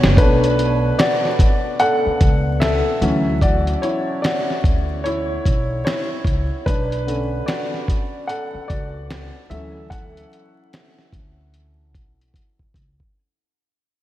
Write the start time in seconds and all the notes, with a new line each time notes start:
Already playing: A3 B3 D4 F#4 C#5 D5
0.04 F#1, snare
0.17 B1 B2 A3 D4 B4 C#5, kick, closed hi-hat
0.44 closed hi-hat
0.59 closed hi-hat
0.99 F#4 D5, finger snap, snare, closed hi-hat
1.25 snare
1.39 kick, closed hi-hat
1.80 A4 F#5, closed hi-hat
2.06 muted upright bass stroke
2.21 C#2, kick, closed hi-hat
2.60 A4 E5, finger snap, snare, closed hi-hat
3.01 D2 E3 F#3 C#4, closed hi-hat
3.41 F#4 D5, kick, closed hi-hat
3.67 closed hi-hat
3.82 E4 C#5, closed hi-hat
4.22 F#4 D5, finger snap, snare, closed hi-hat
4.50 snare
4.64 D2, kick, closed hi-hat
5.04 E4 C#5, closed hi-hat
5.46 B1, kick, closed hi-hat
5.85 E4 C#5, finger snap, snare, closed hi-hat
6.25 C#2, kick, closed hi-hat
6.66 B1 D4 B4, kick, closed hi-hat
6.92 closed hi-hat
7.07 D3 A3 C#4, closed hi-hat
7.46 F#4 D5, finger snap, snare, closed hi-hat
7.74 snare
7.88 kick, closed hi-hat
8.27 A4 F#5, closed hi-hat
8.54 muted upright bass stroke
8.68 C#2 F#4 D5, kick, closed hi-hat
9.11 finger snap, snare, closed hi-hat
9.50 D2 E3 F#3 C#4 A4 E5, closed hi-hat
9.90 A4 F#5, kick, closed hi-hat
10.17 closed hi-hat
10.33 closed hi-hat
10.73 finger snap, snare, closed hi-hat
10.99 snare
11.13 D2, kick, closed hi-hat
11.54 closed hi-hat
11.94 B1, kick, closed hi-hat
12.21 closed hi-hat
12.34 kick, closed hi-hat
12.59 kick
12.74 C#2, kick, closed hi-hat
13.00 kick